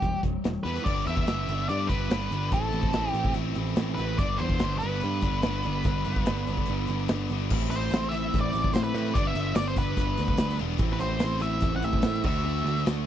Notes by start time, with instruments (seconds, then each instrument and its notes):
Already playing: lead electric guitar G4
0.02 picked electric bass E1, overdriven electric guitar E3 G3, kick, closed hi-hat
0.23 picked electric bass E1, overdriven electric guitar E3 G3, kick, closed hi-hat
0.44 picked electric bass E1, overdriven electric guitar E3 G3, snare, closed hi-hat
0.63 picked electric bass E2, overdriven electric guitar E3 G3 B3, lead electric guitar B4, closed hi-hat
0.76 closed hi-hat
0.84 picked electric bass G1, overdriven electric guitar G2 D3 G3 B3 D4, distorted electric guitar G4, lead electric guitar D5, kick, crash
1.07 picked electric bass E2, overdriven electric guitar G2 D3 G3 B3 D4, distorted electric guitar G4, lead electric guitar E5, closed hi-hat
1.17 kick
1.27 picked electric bass G1, overdriven electric guitar G2 D3 G3 B3 D4, distorted electric guitar G4, snare, closed hi-hat
1.48 picked electric bass G1, overdriven electric guitar G2 D3 G3 B3 D4, distorted electric guitar G4, closed hi-hat
1.69 overdriven electric guitar G2 D3 G3 B3 D4, picked electric bass G2, distorted electric guitar G4, lead electric guitar D5, closed hi-hat
1.87 picked electric bass G1, overdriven electric guitar G2 D3 G3 B3 D4, distorted electric guitar G4, lead electric guitar B4, kick, closed hi-hat
2.10 picked electric bass G1, overdriven electric guitar G2 D3 G3 B3 D4, distorted electric guitar G4, snare, closed hi-hat
2.31 picked electric bass G1, overdriven electric guitar G2 D3 G3 B3 D4, distorted electric guitar G4, closed hi-hat
2.52 picked electric bass A1, overdriven electric guitar A2 E3 A3 C4 E4, lead electric guitar A4, kick, closed hi-hat
2.72 picked electric bass A1, overdriven electric guitar A2 E3 A3 C4 E4, closed hi-hat
2.83 kick
2.93 picked electric bass A1, overdriven electric guitar A2 E3 A3 C4 E4, snare, closed hi-hat
3.11 picked electric bass A1, lead electric guitar G4, closed hi-hat
3.16 overdriven electric guitar A2 E3 A3 C4 E4
3.25 kick
3.34 picked electric bass A1, overdriven electric guitar A2, closed hi-hat
3.38 overdriven electric guitar E3 A3 C4 E4
3.55 picked electric bass A1, overdriven electric guitar A2, closed hi-hat
3.59 overdriven electric guitar E3 A3 C4 E4
3.76 picked electric bass A1, overdriven electric guitar A2 A3, snare, closed hi-hat
3.80 overdriven electric guitar E3 C4 E4
3.95 picked electric bass A1, lead electric guitar B4, snare, closed hi-hat
3.99 overdriven electric guitar A2 E3 A3 C4 E4
4.18 picked electric bass G1, overdriven electric guitar G2 D3 G3 B3 D4, lead electric guitar D5, kick, closed hi-hat
4.38 picked electric bass E2, overdriven electric guitar G2 D3 G3, lead electric guitar C5, closed hi-hat
4.42 overdriven electric guitar B3 D4
4.50 kick
4.59 picked electric bass G1, overdriven electric guitar G2 D3 G3, snare, closed hi-hat
4.64 overdriven electric guitar B3 D4
4.78 overdriven electric guitar G2, lead electric guitar B4, closed hi-hat
4.83 picked electric bass G1, overdriven electric guitar D3 G3 B3 D4
5.01 picked electric bass G2, overdriven electric guitar G2 D3 G3 B3, closed hi-hat
5.05 overdriven electric guitar D4
5.21 picked electric bass G1, overdriven electric guitar G2 D3 G3 B3, kick, closed hi-hat
5.26 overdriven electric guitar D4
5.42 picked electric bass G1, overdriven electric guitar G2 D3 G3, snare, closed hi-hat
5.46 overdriven electric guitar B3 D4
5.63 picked electric bass G1, overdriven electric guitar G2 D3 G3 B3 D4, snare, closed hi-hat
5.84 picked electric bass G1, overdriven electric guitar G2 D3 G3 B3 D4, kick, closed hi-hat
6.05 picked electric bass G1, overdriven electric guitar G2 D3, closed hi-hat
6.09 overdriven electric guitar G3 B3 D4
6.16 kick
6.26 picked electric bass G1, overdriven electric guitar G2 D3 G3 B3, snare, closed hi-hat
6.31 overdriven electric guitar D4
6.46 picked electric bass G1, overdriven electric guitar G2 D3 G3, closed hi-hat
6.51 overdriven electric guitar B3 D4
6.57 kick
6.66 picked electric bass G1, overdriven electric guitar G2 D3, closed hi-hat
6.70 overdriven electric guitar G3 B3 D4
6.87 picked electric bass G1, overdriven electric guitar G2 D3 G3 D4, closed hi-hat
6.91 overdriven electric guitar B3
7.08 picked electric bass G1, overdriven electric guitar G2 D3 G3 B3 D4, snare, closed hi-hat
7.29 picked electric bass G1, overdriven electric guitar G2 D3 G3 B3 D4, closed hi-hat
7.50 picked electric bass A1, overdriven electric guitar A2 E3 A3 C4 E4, kick, crash
7.70 picked electric bass A1, overdriven electric guitar C4 E4, lead electric guitar C5, closed hi-hat, tambourine
7.75 overdriven electric guitar A3
7.90 picked electric bass A1, overdriven electric guitar E3 A3, snare, closed hi-hat, tambourine
7.95 overdriven electric guitar C4 E4
8.09 lead electric guitar E5, tambourine
8.14 overdriven electric guitar A3 C4 E4, closed hi-hat
8.32 picked electric bass A1, overdriven electric guitar A2 E3 A3 C4 E4, kick, closed hi-hat, tambourine
8.41 lead electric guitar D5
8.53 picked electric bass A1, closed hi-hat, tambourine
8.63 kick, tambourine
8.73 picked electric bass A2, overdriven electric guitar E3 A3 C4 E4, lead electric guitar C5, snare, closed hi-hat, tambourine
8.84 lead electric guitar B4, tambourine
8.94 picked electric bass A2, distorted electric guitar A2 E3, overdriven electric guitar A3 C4 E4, closed hi-hat, tambourine
9.05 tambourine
9.14 picked electric bass G1, overdriven electric guitar G2 D3 G3 B3, lead electric guitar D5, kick, closed hi-hat
9.19 overdriven electric guitar D4
9.25 lead electric guitar E5, tambourine
9.35 picked electric bass G1, overdriven electric guitar G3 B3 D4, closed hi-hat, tambourine
9.55 picked electric bass G1, overdriven electric guitar D3 G3 B3 D4, lead electric guitar D5, snare, closed hi-hat, tambourine
9.68 lead electric guitar C5
9.76 overdriven electric guitar G3 B3 D4, lead electric guitar B4, kick, closed hi-hat, tambourine
9.96 picked electric bass G1, overdriven electric guitar G2 D3 G3 B3 D4, kick, closed hi-hat
10.17 picked electric bass D2, closed hi-hat, tambourine
10.28 kick
10.37 picked electric bass D2, overdriven electric guitar D3 G3 B3 D4, snare, closed hi-hat, tambourine
10.50 tambourine
10.58 picked electric bass E1, distorted electric guitar G2 D3, overdriven electric guitar G3 B3 D4, closed hi-hat
10.71 tambourine
10.78 picked electric bass A1, overdriven electric guitar A2 E3 A3 C4 E4, kick, closed hi-hat
10.91 lead electric guitar B4, tambourine
11.00 picked electric bass A1, overdriven electric guitar A3 C4 E4, lead electric guitar C5, closed hi-hat, tambourine
11.19 picked electric bass A1, overdriven electric guitar E3 A3 C4, snare, closed hi-hat, tambourine
11.24 overdriven electric guitar E4
11.40 overdriven electric guitar C4 E4, lead electric guitar E5, closed hi-hat, tambourine
11.44 overdriven electric guitar A3
11.60 picked electric bass A1, overdriven electric guitar A2 E3 A3 C4 E4, kick, closed hi-hat, tambourine
11.76 lead electric guitar F#5
11.82 picked electric bass A1, lead electric guitar E5, closed hi-hat, tambourine
11.93 kick, tambourine
12.02 picked electric bass A2, overdriven electric guitar E3 A3 C4 E4, snare, closed hi-hat, tambourine
12.15 tambourine
12.24 picked electric bass D2, overdriven electric guitar D3 A3 D4 F#4, lead electric guitar E5, kick, tambourine, crash
12.37 tambourine
12.44 picked electric bass D2, overdriven electric guitar D3 A3 D4 F#4, tambourine
12.65 picked electric bass D2, overdriven electric guitar A3 D4 F#4, closed hi-hat
12.77 snare, tambourine
12.86 picked electric bass D2, overdriven electric guitar D3 A3 D4 F#4, snare, closed hi-hat, tambourine